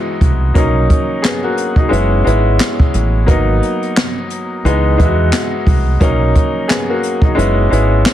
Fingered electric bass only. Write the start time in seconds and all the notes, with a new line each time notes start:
0.21 C2
0.56 B1
1.92 F#1
2.26 G#1
2.94 A1
3.28 G#1
4.65 C#2
5.00 E2
5.67 C2
6.01 B1
7.38 F#1
7.72 G#1